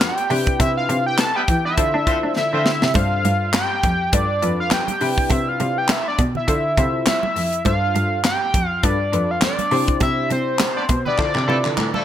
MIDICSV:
0, 0, Header, 1, 6, 480
1, 0, Start_track
1, 0, Tempo, 588235
1, 488, Time_signature, 4, 2, 24, 8
1, 9829, End_track
2, 0, Start_track
2, 0, Title_t, "Analog synth lead"
2, 0, Program_c, 0, 81
2, 16, Note_on_c, 0, 79, 118
2, 489, Note_off_c, 0, 79, 0
2, 494, Note_on_c, 0, 76, 106
2, 616, Note_off_c, 0, 76, 0
2, 630, Note_on_c, 0, 77, 98
2, 850, Note_off_c, 0, 77, 0
2, 869, Note_on_c, 0, 79, 115
2, 978, Note_on_c, 0, 81, 117
2, 990, Note_off_c, 0, 79, 0
2, 1109, Note_on_c, 0, 79, 106
2, 1122, Note_off_c, 0, 81, 0
2, 1343, Note_off_c, 0, 79, 0
2, 1348, Note_on_c, 0, 76, 114
2, 1898, Note_off_c, 0, 76, 0
2, 1937, Note_on_c, 0, 76, 110
2, 2417, Note_on_c, 0, 77, 113
2, 2430, Note_off_c, 0, 76, 0
2, 2893, Note_off_c, 0, 77, 0
2, 2899, Note_on_c, 0, 79, 116
2, 3379, Note_on_c, 0, 74, 110
2, 3392, Note_off_c, 0, 79, 0
2, 3748, Note_off_c, 0, 74, 0
2, 3755, Note_on_c, 0, 77, 96
2, 3860, Note_on_c, 0, 79, 110
2, 3872, Note_off_c, 0, 77, 0
2, 4341, Note_on_c, 0, 76, 101
2, 4354, Note_off_c, 0, 79, 0
2, 4475, Note_on_c, 0, 77, 92
2, 4487, Note_off_c, 0, 76, 0
2, 4716, Note_on_c, 0, 79, 111
2, 4728, Note_off_c, 0, 77, 0
2, 4824, Note_on_c, 0, 76, 99
2, 4837, Note_off_c, 0, 79, 0
2, 4951, Note_off_c, 0, 76, 0
2, 4959, Note_on_c, 0, 74, 89
2, 5063, Note_off_c, 0, 74, 0
2, 5196, Note_on_c, 0, 76, 94
2, 5742, Note_off_c, 0, 76, 0
2, 5781, Note_on_c, 0, 76, 95
2, 6222, Note_off_c, 0, 76, 0
2, 6261, Note_on_c, 0, 77, 112
2, 6702, Note_off_c, 0, 77, 0
2, 6739, Note_on_c, 0, 79, 114
2, 7082, Note_off_c, 0, 79, 0
2, 7082, Note_on_c, 0, 77, 114
2, 7219, Note_on_c, 0, 74, 93
2, 7231, Note_off_c, 0, 77, 0
2, 7596, Note_on_c, 0, 77, 85
2, 7608, Note_off_c, 0, 74, 0
2, 7695, Note_off_c, 0, 77, 0
2, 7701, Note_on_c, 0, 74, 96
2, 8142, Note_off_c, 0, 74, 0
2, 8181, Note_on_c, 0, 76, 95
2, 8398, Note_off_c, 0, 76, 0
2, 8423, Note_on_c, 0, 72, 91
2, 8997, Note_off_c, 0, 72, 0
2, 9039, Note_on_c, 0, 74, 92
2, 9824, Note_off_c, 0, 74, 0
2, 9829, End_track
3, 0, Start_track
3, 0, Title_t, "Analog polysynth"
3, 0, Program_c, 1, 90
3, 0, Note_on_c, 1, 62, 70
3, 0, Note_on_c, 1, 65, 64
3, 0, Note_on_c, 1, 69, 68
3, 0, Note_on_c, 1, 71, 77
3, 100, Note_off_c, 1, 62, 0
3, 102, Note_off_c, 1, 65, 0
3, 103, Note_off_c, 1, 69, 0
3, 104, Note_off_c, 1, 71, 0
3, 243, Note_on_c, 1, 62, 81
3, 246, Note_on_c, 1, 64, 79
3, 249, Note_on_c, 1, 67, 80
3, 251, Note_on_c, 1, 71, 92
3, 1019, Note_off_c, 1, 62, 0
3, 1021, Note_off_c, 1, 64, 0
3, 1022, Note_off_c, 1, 67, 0
3, 1024, Note_off_c, 1, 71, 0
3, 1445, Note_on_c, 1, 64, 77
3, 1448, Note_on_c, 1, 65, 75
3, 1450, Note_on_c, 1, 69, 78
3, 1453, Note_on_c, 1, 72, 93
3, 1560, Note_off_c, 1, 64, 0
3, 1562, Note_off_c, 1, 65, 0
3, 1564, Note_off_c, 1, 69, 0
3, 1567, Note_off_c, 1, 72, 0
3, 1684, Note_on_c, 1, 64, 69
3, 1687, Note_on_c, 1, 65, 62
3, 1688, Note_on_c, 1, 69, 63
3, 1691, Note_on_c, 1, 72, 80
3, 2021, Note_off_c, 1, 64, 0
3, 2023, Note_off_c, 1, 65, 0
3, 2023, Note_off_c, 1, 69, 0
3, 2025, Note_off_c, 1, 72, 0
3, 2405, Note_on_c, 1, 62, 80
3, 2406, Note_on_c, 1, 65, 69
3, 2409, Note_on_c, 1, 69, 74
3, 2411, Note_on_c, 1, 72, 87
3, 2845, Note_off_c, 1, 62, 0
3, 2846, Note_off_c, 1, 65, 0
3, 2848, Note_off_c, 1, 69, 0
3, 2848, Note_off_c, 1, 72, 0
3, 3365, Note_on_c, 1, 62, 81
3, 3367, Note_on_c, 1, 65, 68
3, 3367, Note_on_c, 1, 69, 74
3, 3370, Note_on_c, 1, 71, 84
3, 3479, Note_off_c, 1, 62, 0
3, 3481, Note_off_c, 1, 65, 0
3, 3482, Note_off_c, 1, 69, 0
3, 3485, Note_off_c, 1, 71, 0
3, 3607, Note_on_c, 1, 62, 69
3, 3608, Note_on_c, 1, 65, 65
3, 3611, Note_on_c, 1, 69, 62
3, 3613, Note_on_c, 1, 71, 77
3, 3943, Note_off_c, 1, 62, 0
3, 3943, Note_off_c, 1, 65, 0
3, 3945, Note_off_c, 1, 69, 0
3, 3946, Note_off_c, 1, 71, 0
3, 4086, Note_on_c, 1, 62, 86
3, 4089, Note_on_c, 1, 64, 71
3, 4090, Note_on_c, 1, 67, 76
3, 4093, Note_on_c, 1, 71, 88
3, 4861, Note_off_c, 1, 62, 0
3, 4862, Note_off_c, 1, 64, 0
3, 4863, Note_off_c, 1, 67, 0
3, 4864, Note_off_c, 1, 71, 0
3, 5286, Note_on_c, 1, 64, 81
3, 5288, Note_on_c, 1, 65, 75
3, 5291, Note_on_c, 1, 69, 75
3, 5294, Note_on_c, 1, 72, 90
3, 5400, Note_off_c, 1, 64, 0
3, 5403, Note_off_c, 1, 65, 0
3, 5405, Note_off_c, 1, 69, 0
3, 5408, Note_off_c, 1, 72, 0
3, 5529, Note_on_c, 1, 64, 72
3, 5530, Note_on_c, 1, 65, 63
3, 5532, Note_on_c, 1, 69, 66
3, 5535, Note_on_c, 1, 72, 77
3, 5864, Note_off_c, 1, 64, 0
3, 5864, Note_off_c, 1, 65, 0
3, 5865, Note_off_c, 1, 69, 0
3, 5866, Note_off_c, 1, 72, 0
3, 6247, Note_on_c, 1, 62, 85
3, 6248, Note_on_c, 1, 65, 77
3, 6250, Note_on_c, 1, 69, 73
3, 6252, Note_on_c, 1, 72, 95
3, 6686, Note_off_c, 1, 62, 0
3, 6687, Note_off_c, 1, 65, 0
3, 6688, Note_off_c, 1, 69, 0
3, 6689, Note_off_c, 1, 72, 0
3, 7206, Note_on_c, 1, 62, 76
3, 7208, Note_on_c, 1, 65, 73
3, 7210, Note_on_c, 1, 69, 76
3, 7212, Note_on_c, 1, 71, 91
3, 7320, Note_off_c, 1, 62, 0
3, 7322, Note_off_c, 1, 65, 0
3, 7324, Note_off_c, 1, 69, 0
3, 7327, Note_off_c, 1, 71, 0
3, 7448, Note_on_c, 1, 62, 73
3, 7451, Note_on_c, 1, 65, 65
3, 7453, Note_on_c, 1, 69, 66
3, 7455, Note_on_c, 1, 71, 71
3, 7783, Note_off_c, 1, 62, 0
3, 7785, Note_off_c, 1, 65, 0
3, 7786, Note_off_c, 1, 69, 0
3, 7787, Note_off_c, 1, 71, 0
3, 7928, Note_on_c, 1, 62, 85
3, 7930, Note_on_c, 1, 64, 81
3, 7932, Note_on_c, 1, 67, 76
3, 7933, Note_on_c, 1, 72, 92
3, 8702, Note_off_c, 1, 62, 0
3, 8703, Note_off_c, 1, 64, 0
3, 8704, Note_off_c, 1, 67, 0
3, 8705, Note_off_c, 1, 72, 0
3, 9125, Note_on_c, 1, 64, 83
3, 9127, Note_on_c, 1, 65, 73
3, 9130, Note_on_c, 1, 69, 77
3, 9130, Note_on_c, 1, 72, 93
3, 9239, Note_off_c, 1, 64, 0
3, 9241, Note_off_c, 1, 65, 0
3, 9244, Note_off_c, 1, 69, 0
3, 9245, Note_off_c, 1, 72, 0
3, 9366, Note_on_c, 1, 64, 74
3, 9368, Note_on_c, 1, 65, 66
3, 9371, Note_on_c, 1, 69, 69
3, 9373, Note_on_c, 1, 71, 74
3, 9702, Note_off_c, 1, 64, 0
3, 9703, Note_off_c, 1, 65, 0
3, 9705, Note_off_c, 1, 69, 0
3, 9706, Note_off_c, 1, 71, 0
3, 9829, End_track
4, 0, Start_track
4, 0, Title_t, "Horn section"
4, 0, Program_c, 2, 61
4, 1102, Note_on_c, 2, 55, 102
4, 1102, Note_on_c, 2, 64, 104
4, 1103, Note_on_c, 2, 59, 103
4, 1103, Note_on_c, 2, 71, 112
4, 1170, Note_off_c, 2, 55, 0
4, 1170, Note_off_c, 2, 59, 0
4, 1170, Note_off_c, 2, 64, 0
4, 1170, Note_off_c, 2, 71, 0
4, 1342, Note_on_c, 2, 59, 95
4, 1342, Note_on_c, 2, 64, 83
4, 1342, Note_on_c, 2, 71, 103
4, 1343, Note_on_c, 2, 55, 81
4, 1432, Note_off_c, 2, 59, 0
4, 1432, Note_off_c, 2, 64, 0
4, 1432, Note_off_c, 2, 71, 0
4, 1433, Note_off_c, 2, 55, 0
4, 1689, Note_on_c, 2, 60, 95
4, 1689, Note_on_c, 2, 65, 100
4, 1689, Note_on_c, 2, 72, 103
4, 1690, Note_on_c, 2, 57, 100
4, 1774, Note_off_c, 2, 60, 0
4, 1774, Note_off_c, 2, 65, 0
4, 1774, Note_off_c, 2, 72, 0
4, 1775, Note_off_c, 2, 57, 0
4, 2062, Note_on_c, 2, 65, 99
4, 2063, Note_on_c, 2, 57, 99
4, 2063, Note_on_c, 2, 60, 102
4, 2063, Note_on_c, 2, 72, 111
4, 2215, Note_off_c, 2, 65, 0
4, 2216, Note_off_c, 2, 57, 0
4, 2216, Note_off_c, 2, 60, 0
4, 2216, Note_off_c, 2, 72, 0
4, 8781, Note_on_c, 2, 67, 102
4, 8782, Note_on_c, 2, 59, 93
4, 8783, Note_on_c, 2, 62, 98
4, 8783, Note_on_c, 2, 74, 107
4, 8849, Note_off_c, 2, 59, 0
4, 8849, Note_off_c, 2, 67, 0
4, 8850, Note_off_c, 2, 62, 0
4, 8850, Note_off_c, 2, 74, 0
4, 9021, Note_on_c, 2, 55, 86
4, 9021, Note_on_c, 2, 59, 93
4, 9021, Note_on_c, 2, 64, 81
4, 9021, Note_on_c, 2, 71, 101
4, 9111, Note_off_c, 2, 55, 0
4, 9111, Note_off_c, 2, 59, 0
4, 9111, Note_off_c, 2, 64, 0
4, 9111, Note_off_c, 2, 71, 0
4, 9364, Note_on_c, 2, 53, 104
4, 9364, Note_on_c, 2, 64, 99
4, 9365, Note_on_c, 2, 57, 106
4, 9365, Note_on_c, 2, 69, 115
4, 9451, Note_off_c, 2, 53, 0
4, 9451, Note_off_c, 2, 64, 0
4, 9452, Note_off_c, 2, 57, 0
4, 9452, Note_off_c, 2, 69, 0
4, 9738, Note_on_c, 2, 64, 100
4, 9740, Note_on_c, 2, 53, 99
4, 9740, Note_on_c, 2, 57, 105
4, 9740, Note_on_c, 2, 69, 114
4, 9829, Note_off_c, 2, 53, 0
4, 9829, Note_off_c, 2, 57, 0
4, 9829, Note_off_c, 2, 64, 0
4, 9829, Note_off_c, 2, 69, 0
4, 9829, End_track
5, 0, Start_track
5, 0, Title_t, "Cello"
5, 0, Program_c, 3, 42
5, 247, Note_on_c, 3, 48, 97
5, 428, Note_off_c, 3, 48, 0
5, 489, Note_on_c, 3, 48, 116
5, 669, Note_off_c, 3, 48, 0
5, 731, Note_on_c, 3, 48, 102
5, 1011, Note_off_c, 3, 48, 0
5, 1210, Note_on_c, 3, 52, 101
5, 1389, Note_off_c, 3, 52, 0
5, 1450, Note_on_c, 3, 50, 81
5, 1550, Note_off_c, 3, 50, 0
5, 1585, Note_on_c, 3, 62, 107
5, 1664, Note_off_c, 3, 62, 0
5, 1825, Note_on_c, 3, 62, 96
5, 1903, Note_off_c, 3, 62, 0
5, 1931, Note_on_c, 3, 50, 80
5, 2031, Note_off_c, 3, 50, 0
5, 2066, Note_on_c, 3, 50, 85
5, 2144, Note_off_c, 3, 50, 0
5, 2308, Note_on_c, 3, 48, 98
5, 2385, Note_off_c, 3, 48, 0
5, 2409, Note_on_c, 3, 43, 117
5, 2589, Note_off_c, 3, 43, 0
5, 2650, Note_on_c, 3, 43, 104
5, 2930, Note_off_c, 3, 43, 0
5, 3130, Note_on_c, 3, 41, 107
5, 3309, Note_off_c, 3, 41, 0
5, 3370, Note_on_c, 3, 43, 95
5, 3607, Note_off_c, 3, 43, 0
5, 3611, Note_on_c, 3, 41, 100
5, 3790, Note_off_c, 3, 41, 0
5, 4092, Note_on_c, 3, 48, 86
5, 4271, Note_off_c, 3, 48, 0
5, 4329, Note_on_c, 3, 48, 96
5, 4509, Note_off_c, 3, 48, 0
5, 4570, Note_on_c, 3, 48, 92
5, 4850, Note_off_c, 3, 48, 0
5, 5048, Note_on_c, 3, 47, 98
5, 5228, Note_off_c, 3, 47, 0
5, 5288, Note_on_c, 3, 50, 98
5, 5468, Note_off_c, 3, 50, 0
5, 5528, Note_on_c, 3, 48, 106
5, 5708, Note_off_c, 3, 48, 0
5, 6007, Note_on_c, 3, 41, 80
5, 6188, Note_off_c, 3, 41, 0
5, 6249, Note_on_c, 3, 43, 114
5, 6429, Note_off_c, 3, 43, 0
5, 6488, Note_on_c, 3, 43, 97
5, 6769, Note_off_c, 3, 43, 0
5, 6970, Note_on_c, 3, 41, 97
5, 7149, Note_off_c, 3, 41, 0
5, 7210, Note_on_c, 3, 43, 96
5, 7390, Note_off_c, 3, 43, 0
5, 7447, Note_on_c, 3, 41, 98
5, 7627, Note_off_c, 3, 41, 0
5, 7928, Note_on_c, 3, 48, 97
5, 8108, Note_off_c, 3, 48, 0
5, 8167, Note_on_c, 3, 48, 107
5, 8348, Note_off_c, 3, 48, 0
5, 8407, Note_on_c, 3, 48, 89
5, 8688, Note_off_c, 3, 48, 0
5, 8888, Note_on_c, 3, 47, 96
5, 9068, Note_off_c, 3, 47, 0
5, 9129, Note_on_c, 3, 50, 92
5, 9230, Note_off_c, 3, 50, 0
5, 9263, Note_on_c, 3, 48, 101
5, 9342, Note_off_c, 3, 48, 0
5, 9367, Note_on_c, 3, 48, 101
5, 9468, Note_off_c, 3, 48, 0
5, 9502, Note_on_c, 3, 50, 92
5, 9582, Note_off_c, 3, 50, 0
5, 9607, Note_on_c, 3, 45, 89
5, 9708, Note_off_c, 3, 45, 0
5, 9829, End_track
6, 0, Start_track
6, 0, Title_t, "Drums"
6, 4, Note_on_c, 9, 39, 87
6, 7, Note_on_c, 9, 38, 101
6, 7, Note_on_c, 9, 42, 103
6, 86, Note_off_c, 9, 39, 0
6, 89, Note_off_c, 9, 38, 0
6, 89, Note_off_c, 9, 42, 0
6, 144, Note_on_c, 9, 42, 54
6, 226, Note_off_c, 9, 42, 0
6, 247, Note_on_c, 9, 46, 89
6, 329, Note_off_c, 9, 46, 0
6, 381, Note_on_c, 9, 42, 52
6, 384, Note_on_c, 9, 36, 99
6, 463, Note_off_c, 9, 42, 0
6, 466, Note_off_c, 9, 36, 0
6, 488, Note_on_c, 9, 36, 109
6, 488, Note_on_c, 9, 42, 88
6, 570, Note_off_c, 9, 36, 0
6, 570, Note_off_c, 9, 42, 0
6, 731, Note_on_c, 9, 42, 67
6, 812, Note_off_c, 9, 42, 0
6, 965, Note_on_c, 9, 39, 109
6, 968, Note_on_c, 9, 38, 127
6, 969, Note_on_c, 9, 42, 100
6, 1047, Note_off_c, 9, 39, 0
6, 1050, Note_off_c, 9, 38, 0
6, 1051, Note_off_c, 9, 42, 0
6, 1207, Note_on_c, 9, 42, 88
6, 1209, Note_on_c, 9, 36, 98
6, 1288, Note_off_c, 9, 42, 0
6, 1291, Note_off_c, 9, 36, 0
6, 1448, Note_on_c, 9, 42, 116
6, 1449, Note_on_c, 9, 36, 109
6, 1530, Note_off_c, 9, 42, 0
6, 1531, Note_off_c, 9, 36, 0
6, 1688, Note_on_c, 9, 36, 101
6, 1690, Note_on_c, 9, 42, 82
6, 1770, Note_off_c, 9, 36, 0
6, 1772, Note_off_c, 9, 42, 0
6, 1928, Note_on_c, 9, 38, 57
6, 2010, Note_off_c, 9, 38, 0
6, 2168, Note_on_c, 9, 38, 109
6, 2249, Note_off_c, 9, 38, 0
6, 2302, Note_on_c, 9, 38, 93
6, 2383, Note_off_c, 9, 38, 0
6, 2400, Note_on_c, 9, 62, 56
6, 2407, Note_on_c, 9, 42, 91
6, 2408, Note_on_c, 9, 36, 123
6, 2482, Note_off_c, 9, 62, 0
6, 2489, Note_off_c, 9, 42, 0
6, 2490, Note_off_c, 9, 36, 0
6, 2651, Note_on_c, 9, 42, 70
6, 2654, Note_on_c, 9, 62, 59
6, 2732, Note_off_c, 9, 42, 0
6, 2735, Note_off_c, 9, 62, 0
6, 2885, Note_on_c, 9, 39, 115
6, 2888, Note_on_c, 9, 38, 127
6, 2890, Note_on_c, 9, 42, 96
6, 2894, Note_on_c, 9, 63, 73
6, 2967, Note_off_c, 9, 39, 0
6, 2970, Note_off_c, 9, 38, 0
6, 2971, Note_off_c, 9, 42, 0
6, 2976, Note_off_c, 9, 63, 0
6, 3127, Note_on_c, 9, 42, 78
6, 3129, Note_on_c, 9, 36, 93
6, 3130, Note_on_c, 9, 62, 55
6, 3209, Note_off_c, 9, 42, 0
6, 3211, Note_off_c, 9, 36, 0
6, 3212, Note_off_c, 9, 62, 0
6, 3368, Note_on_c, 9, 42, 114
6, 3370, Note_on_c, 9, 36, 113
6, 3450, Note_off_c, 9, 42, 0
6, 3452, Note_off_c, 9, 36, 0
6, 3611, Note_on_c, 9, 42, 83
6, 3619, Note_on_c, 9, 62, 43
6, 3693, Note_off_c, 9, 42, 0
6, 3701, Note_off_c, 9, 62, 0
6, 3843, Note_on_c, 9, 39, 90
6, 3846, Note_on_c, 9, 38, 104
6, 3846, Note_on_c, 9, 42, 107
6, 3849, Note_on_c, 9, 63, 84
6, 3925, Note_off_c, 9, 39, 0
6, 3928, Note_off_c, 9, 38, 0
6, 3928, Note_off_c, 9, 42, 0
6, 3931, Note_off_c, 9, 63, 0
6, 3982, Note_on_c, 9, 63, 71
6, 3985, Note_on_c, 9, 42, 59
6, 4063, Note_off_c, 9, 63, 0
6, 4066, Note_off_c, 9, 42, 0
6, 4086, Note_on_c, 9, 46, 84
6, 4167, Note_off_c, 9, 46, 0
6, 4224, Note_on_c, 9, 36, 94
6, 4306, Note_off_c, 9, 36, 0
6, 4321, Note_on_c, 9, 62, 63
6, 4328, Note_on_c, 9, 36, 109
6, 4328, Note_on_c, 9, 42, 86
6, 4402, Note_off_c, 9, 62, 0
6, 4410, Note_off_c, 9, 36, 0
6, 4410, Note_off_c, 9, 42, 0
6, 4569, Note_on_c, 9, 42, 71
6, 4572, Note_on_c, 9, 62, 58
6, 4650, Note_off_c, 9, 42, 0
6, 4654, Note_off_c, 9, 62, 0
6, 4804, Note_on_c, 9, 39, 112
6, 4807, Note_on_c, 9, 38, 127
6, 4808, Note_on_c, 9, 42, 102
6, 4813, Note_on_c, 9, 63, 75
6, 4885, Note_off_c, 9, 39, 0
6, 4888, Note_off_c, 9, 38, 0
6, 4889, Note_off_c, 9, 42, 0
6, 4894, Note_off_c, 9, 63, 0
6, 5047, Note_on_c, 9, 42, 79
6, 5048, Note_on_c, 9, 36, 102
6, 5048, Note_on_c, 9, 62, 59
6, 5128, Note_off_c, 9, 42, 0
6, 5130, Note_off_c, 9, 36, 0
6, 5130, Note_off_c, 9, 62, 0
6, 5182, Note_on_c, 9, 64, 69
6, 5264, Note_off_c, 9, 64, 0
6, 5287, Note_on_c, 9, 42, 119
6, 5289, Note_on_c, 9, 36, 105
6, 5369, Note_off_c, 9, 42, 0
6, 5370, Note_off_c, 9, 36, 0
6, 5528, Note_on_c, 9, 36, 99
6, 5530, Note_on_c, 9, 42, 84
6, 5610, Note_off_c, 9, 36, 0
6, 5611, Note_off_c, 9, 42, 0
6, 5765, Note_on_c, 9, 39, 86
6, 5767, Note_on_c, 9, 42, 104
6, 5767, Note_on_c, 9, 63, 82
6, 5768, Note_on_c, 9, 38, 115
6, 5846, Note_off_c, 9, 39, 0
6, 5849, Note_off_c, 9, 38, 0
6, 5849, Note_off_c, 9, 42, 0
6, 5849, Note_off_c, 9, 63, 0
6, 5901, Note_on_c, 9, 63, 69
6, 5983, Note_off_c, 9, 63, 0
6, 6008, Note_on_c, 9, 46, 93
6, 6089, Note_off_c, 9, 46, 0
6, 6142, Note_on_c, 9, 42, 58
6, 6223, Note_off_c, 9, 42, 0
6, 6242, Note_on_c, 9, 62, 66
6, 6248, Note_on_c, 9, 42, 88
6, 6249, Note_on_c, 9, 36, 113
6, 6323, Note_off_c, 9, 62, 0
6, 6330, Note_off_c, 9, 36, 0
6, 6330, Note_off_c, 9, 42, 0
6, 6491, Note_on_c, 9, 42, 72
6, 6493, Note_on_c, 9, 62, 59
6, 6573, Note_off_c, 9, 42, 0
6, 6575, Note_off_c, 9, 62, 0
6, 6727, Note_on_c, 9, 39, 106
6, 6730, Note_on_c, 9, 38, 126
6, 6731, Note_on_c, 9, 42, 100
6, 6733, Note_on_c, 9, 63, 66
6, 6809, Note_off_c, 9, 39, 0
6, 6812, Note_off_c, 9, 38, 0
6, 6813, Note_off_c, 9, 42, 0
6, 6814, Note_off_c, 9, 63, 0
6, 6968, Note_on_c, 9, 42, 85
6, 6969, Note_on_c, 9, 36, 101
6, 6970, Note_on_c, 9, 62, 57
6, 7050, Note_off_c, 9, 42, 0
6, 7051, Note_off_c, 9, 36, 0
6, 7052, Note_off_c, 9, 62, 0
6, 7208, Note_on_c, 9, 42, 115
6, 7210, Note_on_c, 9, 36, 115
6, 7289, Note_off_c, 9, 42, 0
6, 7291, Note_off_c, 9, 36, 0
6, 7451, Note_on_c, 9, 42, 85
6, 7459, Note_on_c, 9, 62, 39
6, 7533, Note_off_c, 9, 42, 0
6, 7541, Note_off_c, 9, 62, 0
6, 7684, Note_on_c, 9, 39, 90
6, 7687, Note_on_c, 9, 38, 107
6, 7687, Note_on_c, 9, 42, 102
6, 7689, Note_on_c, 9, 63, 82
6, 7765, Note_off_c, 9, 39, 0
6, 7768, Note_off_c, 9, 38, 0
6, 7768, Note_off_c, 9, 42, 0
6, 7771, Note_off_c, 9, 63, 0
6, 7824, Note_on_c, 9, 42, 57
6, 7824, Note_on_c, 9, 63, 71
6, 7905, Note_off_c, 9, 42, 0
6, 7905, Note_off_c, 9, 63, 0
6, 7925, Note_on_c, 9, 46, 87
6, 8007, Note_off_c, 9, 46, 0
6, 8059, Note_on_c, 9, 42, 57
6, 8063, Note_on_c, 9, 36, 92
6, 8140, Note_off_c, 9, 42, 0
6, 8145, Note_off_c, 9, 36, 0
6, 8163, Note_on_c, 9, 62, 63
6, 8166, Note_on_c, 9, 42, 85
6, 8168, Note_on_c, 9, 36, 115
6, 8245, Note_off_c, 9, 62, 0
6, 8248, Note_off_c, 9, 42, 0
6, 8249, Note_off_c, 9, 36, 0
6, 8408, Note_on_c, 9, 42, 69
6, 8415, Note_on_c, 9, 62, 56
6, 8490, Note_off_c, 9, 42, 0
6, 8496, Note_off_c, 9, 62, 0
6, 8643, Note_on_c, 9, 39, 111
6, 8646, Note_on_c, 9, 38, 122
6, 8647, Note_on_c, 9, 42, 98
6, 8656, Note_on_c, 9, 63, 71
6, 8725, Note_off_c, 9, 39, 0
6, 8728, Note_off_c, 9, 38, 0
6, 8729, Note_off_c, 9, 42, 0
6, 8737, Note_off_c, 9, 63, 0
6, 8885, Note_on_c, 9, 42, 78
6, 8888, Note_on_c, 9, 36, 97
6, 8892, Note_on_c, 9, 62, 55
6, 8967, Note_off_c, 9, 42, 0
6, 8970, Note_off_c, 9, 36, 0
6, 8974, Note_off_c, 9, 62, 0
6, 9026, Note_on_c, 9, 64, 69
6, 9107, Note_off_c, 9, 64, 0
6, 9127, Note_on_c, 9, 39, 63
6, 9129, Note_on_c, 9, 36, 118
6, 9209, Note_off_c, 9, 39, 0
6, 9211, Note_off_c, 9, 36, 0
6, 9262, Note_on_c, 9, 39, 55
6, 9344, Note_off_c, 9, 39, 0
6, 9382, Note_on_c, 9, 62, 37
6, 9463, Note_off_c, 9, 62, 0
6, 9504, Note_on_c, 9, 39, 68
6, 9585, Note_off_c, 9, 39, 0
6, 9609, Note_on_c, 9, 63, 75
6, 9610, Note_on_c, 9, 39, 87
6, 9691, Note_off_c, 9, 39, 0
6, 9691, Note_off_c, 9, 63, 0
6, 9744, Note_on_c, 9, 63, 73
6, 9825, Note_off_c, 9, 63, 0
6, 9829, End_track
0, 0, End_of_file